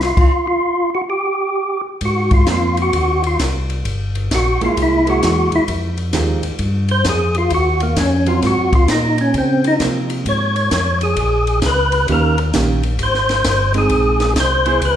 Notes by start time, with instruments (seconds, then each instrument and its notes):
Already playing: tonewheel organ C2
0.01 tonewheel organ F4, snare, open hi-hat
0.17 kick, crash
0.47 tonewheel organ F4
0.95 tonewheel organ F#4
1.10 tonewheel organ G4
2.01 tonewheel organ G#2, kick, ride
2.05 tonewheel organ F#4
2.31 tonewheel organ F4, kick, ride
2.47 tonewheel organ F2, hollow-body jazz guitar A#3 C4, snare, hi-hat pedal, ride
2.52 tonewheel organ F4
2.77 ride
2.82 tonewheel organ F#4
2.93 tonewheel organ D#2, kick, ride
3.24 tonewheel organ F4, ride
3.39 tonewheel organ C2, kick, snare, hi-hat pedal, ride
3.70 ride
3.85 tonewheel organ G1, kick, ride
4.15 ride
4.31 tonewheel organ A#1 F#4, kick, snare, hi-hat pedal, ride
4.61 tonewheel organ A#1 F4, hollow-body jazz guitar G#3 A#3 E4, ride
4.77 tonewheel organ C2, kick, ride
4.82 tonewheel organ E4
5.06 hollow-body jazz guitar G#3 A#3 E4, tonewheel organ F#4, ride
5.23 tonewheel organ E2, kick, snare, hi-hat pedal, ride
5.52 tonewheel organ E2 E4, ride
5.68 tonewheel organ F2, kick, ride
5.97 ride
6.13 tonewheel organ D#2, hollow-body jazz guitar F3 G#3 D#4 G4, kick, snare, hi-hat pedal, ride
6.43 tonewheel organ D#2, ride
6.59 tonewheel organ G2, kick, ride
6.88 tonewheel organ C5, ride
7.05 tonewheel organ F2, kick, snare, hi-hat pedal, ride
7.09 tonewheel organ G#4
7.35 tonewheel organ F4, ride
7.50 tonewheel organ D#2, kick, ride
7.54 tonewheel organ F#4
7.80 tonewheel organ A#3, ride
7.96 tonewheel organ F2 C#4, kick, snare, hi-hat pedal, ride
8.26 hollow-body jazz guitar F#3 C4 F4, tonewheel organ F4, ride
8.42 tonewheel organ G#2, kick, snare, ride
8.47 tonewheel organ F#4
8.57 tonewheel organ F#2
8.73 tonewheel organ D#2 F4, kick, ride
8.88 tonewheel organ A#2 D#4, snare, hi-hat pedal, ride
9.18 tonewheel organ C#4, ride
9.34 tonewheel organ C#3 C4, kick, ride
9.64 tonewheel organ D#4, ride
9.80 tonewheel organ C3, hollow-body jazz guitar F3 A#3 C4, kick, snare, hi-hat pedal, ride
10.10 ride
10.26 tonewheel organ G#2 C#5, kick, ride
10.56 ride
10.71 tonewheel organ F2, kick, snare, hi-hat pedal, ride
11.01 tonewheel organ G#4, ride
11.16 tonewheel organ A#1, kick, ride
11.47 ride
11.62 tonewheel organ C#2, kick, snare, hi-hat pedal, ride
11.66 tonewheel organ B4
11.92 ride
12.08 tonewheel organ D#2, hollow-body jazz guitar D#3 A#3 C#4 G4, kick, ride
12.12 tonewheel organ A#4
12.38 ride
12.54 tonewheel organ A#1, hollow-body jazz guitar D#3 A#3 C#4 G4, kick, snare, hi-hat pedal, ride
12.83 ride
12.99 tonewheel organ G#1, kick, ride
13.03 tonewheel organ C5
13.14 snare
13.29 snare, ride
13.44 tonewheel organ G1, kick, snare, hi-hat pedal, ride
13.74 hollow-body jazz guitar G#3 C4 D#4, tonewheel organ G#4, ride
13.90 tonewheel organ A#1, kick, ride
14.20 snare, ride
14.36 tonewheel organ C2, kick, snare, hi-hat pedal, ride
14.40 tonewheel organ C5
14.66 hollow-body jazz guitar B3 E4 G#4, ride
14.81 tonewheel organ C#2 B4, kick, ride